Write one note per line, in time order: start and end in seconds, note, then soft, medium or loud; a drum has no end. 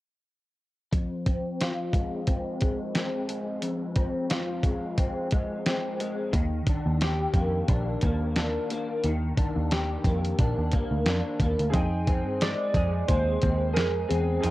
0.93 3.60 F2 medium
0.93 kick medium
0.93 closed hi-hat medium
1.26 2.26 C4 soft
1.26 kick medium
1.26 closed hi-hat medium
1.61 4.29 F4 medium
1.61 snare medium
1.61 closed hi-hat medium
1.93 2.60 G#3 medium
1.93 kick medium
1.93 closed hi-hat soft
2.27 2.94 C4 medium
2.27 kick medium
2.27 closed hi-hat medium
2.61 3.28 G#3 medium
2.61 kick medium
2.61 closed hi-hat medium
2.95 3.95 C4 medium
2.95 snare medium
2.95 closed hi-hat medium
3.29 4.63 G#3 medium
3.29 closed hi-hat medium
3.62 6.33 F2 medium
3.62 closed hi-hat medium
3.96 4.97 C4 medium
3.96 kick medium
3.96 closed hi-hat medium
4.30 7.02 F4 medium
4.30 snare medium
4.30 closed hi-hat medium
4.63 5.31 G#3 soft
4.63 kick medium
4.63 closed hi-hat medium
4.98 5.66 C4 medium
4.98 kick medium
4.98 closed hi-hat medium
5.31 5.99 G#3 medium
5.31 kick medium
5.31 closed hi-hat medium
5.66 6.41 C4 medium
5.66 snare medium
5.66 closed hi-hat medium
6.00 6.41 G#3 medium
6.00 closed hi-hat medium
6.33 6.60 D#2 medium
6.33 9.05 D#3 medium
6.33 kick medium
6.33 closed hi-hat medium
6.67 7.68 D4 medium
6.67 kick medium
6.67 closed hi-hat medium
6.86 7.25 D#2 medium
7.01 9.71 G4 medium
7.01 snare medium
7.01 closed hi-hat medium
7.33 7.61 F2 medium
7.33 8.03 A#3 medium
7.33 kick medium
7.33 closed hi-hat medium
7.68 7.96 A#1 medium
7.68 8.36 D4 medium
7.68 kick medium
7.68 closed hi-hat medium
8.01 8.57 D#2 medium
8.01 8.70 A#3 medium
8.01 kick medium
8.01 closed hi-hat medium
8.36 9.37 D4 medium
8.36 snare medium
8.36 closed hi-hat medium
8.70 10.05 A#3 medium
8.70 closed hi-hat medium
9.04 9.31 D#2 medium
9.04 12.55 D#3 medium
9.04 closed hi-hat medium
9.37 10.38 D4 medium
9.37 kick medium
9.37 closed hi-hat medium
9.56 9.95 D#2 medium
9.71 11.74 G4 medium
9.71 snare medium
9.71 closed hi-hat medium
10.04 10.32 F2 medium
10.04 10.72 A#3 medium
10.04 kick medium
10.04 closed hi-hat medium
10.25 closed hi-hat soft
10.39 10.54 A#1 medium
10.39 11.07 D4 medium
10.39 kick medium
10.39 closed hi-hat medium
10.58 10.70 D#2 medium
10.72 11.40 A#3 medium
10.72 kick medium
10.72 closed hi-hat medium
10.91 11.03 D2 medium
11.06 11.21 F2 medium
11.06 11.82 D4 medium
11.06 snare medium
11.06 closed hi-hat medium
11.40 11.55 D#2 medium
11.40 11.82 A#3 medium
11.40 kick medium
11.40 closed hi-hat medium
11.59 11.71 D2 medium
11.59 closed hi-hat soft
11.70 12.27 F2 medium
11.70 14.39 C4 medium
11.70 14.40 D#4 medium
11.70 14.38 G#4 medium
11.70 kick medium
11.70 closed hi-hat medium
11.75 12.75 G#4 medium
11.75 14.41 G5 medium
12.07 13.40 C4 medium
12.07 kick medium
12.07 closed hi-hat medium
12.27 12.54 G2 medium
12.41 13.08 G#3 medium
12.41 13.11 D5 medium
12.41 snare medium
12.41 closed hi-hat medium
12.74 13.02 F2 medium
12.74 13.72 G#4 medium
12.74 kick medium
12.74 closed hi-hat medium
13.08 13.36 D#2 medium
13.08 14.51 G#3 medium
13.08 13.78 C5 medium
13.08 kick medium
13.08 closed hi-hat medium
13.41 13.77 D#2 medium
13.41 14.07 C4 medium
13.41 kick medium
13.41 closed hi-hat medium
13.73 14.41 G#4 medium
13.73 14.10 A#4 medium
13.73 snare medium
13.73 closed hi-hat medium
13.77 14.04 F2 medium
14.08 14.37 E2 medium
14.08 14.51 C4 medium
14.08 14.51 G#4 medium
14.08 closed hi-hat medium
14.41 14.51 F2 medium
14.41 14.51 C4 medium
14.41 14.51 D#4 medium
14.41 14.51 G#4 medium
14.41 closed hi-hat medium
14.46 14.51 G5 medium